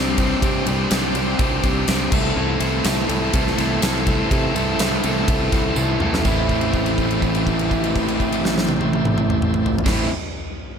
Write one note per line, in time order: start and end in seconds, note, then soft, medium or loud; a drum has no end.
0.00 0.34 C2 medium
0.00 0.18 C3 medium
0.00 0.18 G3 medium
0.00 0.19 C4 medium
0.00 2.09 C4 medium
0.00 0.19 D4 medium
0.00 2.09 D4 medium
0.00 0.19 G4 loud
0.00 2.09 G4 medium
0.00 2.09 C5 medium
0.18 0.42 C3 medium
0.18 0.41 G3 medium
0.18 0.42 C4 medium
0.18 0.43 D4 medium
0.18 0.43 G4 medium
0.18 kick medium
0.18 ride medium
0.42 0.62 C3 medium
0.42 0.67 C3 medium
0.42 0.66 G3 loud
0.42 0.67 C4 loud
0.42 0.67 D4 loud
0.42 0.67 G4 loud
0.42 kick loud
0.42 ride medium
0.66 0.86 C2 medium
0.66 0.90 C3 medium
0.66 0.90 G3 medium
0.66 0.91 C4 loud
0.66 0.91 D4 loud
0.66 0.91 G4 loud
0.66 ride medium
0.90 1.11 C2 medium
0.90 1.15 C3 medium
0.90 1.14 G3 medium
0.90 1.16 C4 loud
0.90 1.16 D4 loud
0.90 1.16 G4 loud
0.90 snare loud
0.90 ride medium
0.90 tambourine medium
1.14 1.34 C2 loud
1.14 1.38 C3 medium
1.14 1.39 G3 medium
1.14 1.40 C4 medium
1.14 1.39 D4 medium
1.14 1.40 G4 medium
1.14 ride medium
1.39 1.59 C2 medium
1.39 1.63 C3 loud
1.39 1.63 G3 loud
1.39 1.64 C4 loud
1.39 1.64 D4 loud
1.39 1.64 G4 loud
1.39 kick loud
1.39 ride medium
1.64 1.83 C2 medium
1.64 1.87 C3 medium
1.64 1.87 G3 medium
1.64 1.89 C4 medium
1.64 1.88 D4 medium
1.64 1.89 G4 loud
1.64 kick medium
1.64 ride medium
1.88 2.08 C2 medium
1.88 2.12 C3 medium
1.88 2.11 G3 loud
1.88 2.13 C4 medium
1.88 2.11 D4 loud
1.88 2.12 G4 medium
1.88 snare loud
1.88 ride medium
1.88 tambourine medium
2.12 2.32 C2 medium
2.12 2.35 C3 medium
2.12 2.36 E3 medium
2.12 2.37 A3 loud
2.12 6.21 C4 medium
2.12 6.21 E4 medium
2.12 2.37 E4 loud
2.12 6.21 A4 medium
2.12 2.37 A4 loud
2.12 6.21 C5 medium
2.12 kick loud
2.12 crash loud
2.36 2.56 C2 loud
2.36 2.59 C3 medium
2.36 2.60 E3 loud
2.36 2.61 A3 loud
2.36 2.61 E4 loud
2.36 2.62 A4 loud
2.59 2.80 C2 medium
2.59 2.84 C3 medium
2.59 2.84 E3 medium
2.59 2.85 A3 loud
2.59 2.85 E4 medium
2.59 2.86 A4 medium
2.59 ride medium
2.84 3.04 C2 medium
2.84 3.07 C3 loud
2.84 3.08 E3 loud
2.84 3.08 A3 loud
2.84 3.09 E4 loud
2.84 3.09 A4 loud
2.84 snare loud
2.84 ride loud
2.84 tambourine loud
3.08 3.29 C2 loud
3.08 3.32 C3 medium
3.08 3.33 E3 medium
3.08 3.34 A3 medium
3.08 3.34 E4 medium
3.08 3.34 A4 medium
3.08 ride medium
3.33 3.53 C2 loud
3.33 3.55 C3 loud
3.33 3.57 E3 loud
3.33 3.57 A3 loud
3.33 3.58 E4 loud
3.33 3.58 A4 loud
3.33 kick loud
3.33 ride loud
3.47 snare soft
3.56 3.78 C2 medium
3.56 3.80 C3 medium
3.56 3.81 E3 medium
3.56 3.82 A3 medium
3.56 3.82 E4 medium
3.56 3.83 A4 medium
3.56 snare soft
3.56 ride medium
3.81 4.21 C2 medium
3.81 4.05 C3 loud
3.81 4.07 E3 loud
3.81 4.07 A3 medium
3.81 4.08 E4 loud
3.81 4.08 A4 loud
3.81 snare loud
3.81 ride loud
3.81 tambourine loud
4.06 4.29 C3 medium
4.06 4.30 E3 medium
4.06 4.30 A3 medium
4.06 4.31 E4 medium
4.06 4.31 A4 medium
4.06 kick medium
4.06 ride medium
4.30 4.52 C3 medium
4.30 4.50 C3 medium
4.30 4.53 E3 medium
4.30 4.54 A3 loud
4.30 4.54 E4 loud
4.30 4.55 A4 loud
4.30 kick loud
4.30 ride medium
4.54 4.75 C2 medium
4.54 4.78 C3 medium
4.54 4.78 E3 medium
4.54 4.79 A3 medium
4.54 4.80 E4 loud
4.54 4.80 A4 loud
4.54 ride medium
4.79 4.98 C2 medium
4.79 5.02 C3 medium
4.79 5.03 E3 medium
4.79 5.04 A3 medium
4.79 5.04 E4 loud
4.79 5.04 A4 loud
4.79 snare loud
4.79 ride medium
4.79 tambourine loud
5.04 5.23 C2 medium
5.04 5.27 C3 medium
5.04 5.27 E3 medium
5.04 5.28 A3 medium
5.04 5.29 E4 medium
5.04 5.29 A4 medium
5.04 ride medium
5.28 5.48 C2 medium
5.28 5.50 C3 loud
5.28 5.51 E3 loud
5.28 5.52 A3 loud
5.28 5.52 E4 loud
5.28 5.52 A4 loud
5.28 kick loud
5.28 ride medium
5.52 5.72 C2 medium
5.52 5.74 C3 medium
5.52 5.75 E3 medium
5.52 5.75 A3 medium
5.52 5.76 E4 medium
5.52 5.76 A4 loud
5.52 kick medium
5.52 snare soft
5.52 ride medium
5.75 5.96 C2 medium
5.75 5.99 C3 medium
5.75 6.00 E3 medium
5.75 6.00 A3 medium
5.75 6.01 E4 medium
5.75 6.01 A4 loud
5.75 high tom medium
5.75 tambourine loud
6.00 6.20 C2 medium
6.00 6.22 C3 medium
6.00 6.23 E3 medium
6.00 6.23 A3 medium
6.00 6.24 E4 medium
6.00 6.24 A4 medium
6.00 mid tom medium
6.14 snare medium
6.22 9.76 A1 medium
6.22 9.79 A2 medium
6.22 9.79 E3 medium
6.22 9.80 A3 loud
6.22 9.80 C4 medium
6.22 9.76 E4 medium
6.22 9.76 G4 medium
6.22 9.77 A4 medium
6.22 9.76 C5 medium
6.22 kick loud
6.22 crash medium
6.22 tambourine medium
6.27 9.81 E4 loud
6.49 kick medium
6.49 crash soft
6.61 crash soft
6.73 kick medium
6.73 crash medium
6.86 crash soft
6.98 kick medium
6.98 crash soft
7.11 crash soft
7.22 kick medium
7.22 crash soft
7.35 crash medium
7.47 kick medium
7.47 crash medium
7.59 crash medium
7.71 kick medium
7.71 crash soft
7.84 crash soft
7.96 kick medium
7.96 crash medium
8.08 crash medium
8.20 kick medium
8.20 crash soft
8.32 crash medium
8.45 snare medium
8.58 snare medium
8.69 high tom medium
8.81 high tom medium
8.93 high tom loud
9.05 mid tom medium
9.18 mid tom loud
9.30 mid tom loud
9.42 mid tom loud
9.54 mid tom loud
9.66 floor tom medium
9.79 floor tom loud
9.84 10.06 A1 medium
9.84 10.07 A2 medium
9.84 10.08 E3 medium
9.84 10.08 A3 loud
9.84 10.09 C4 medium
9.84 10.08 E4 medium
9.84 10.08 G4 medium
9.84 10.08 A4 medium
9.84 10.08 C5 medium
9.84 kick loud
9.84 snare loud
9.84 crash loud
9.88 10.09 E4 loud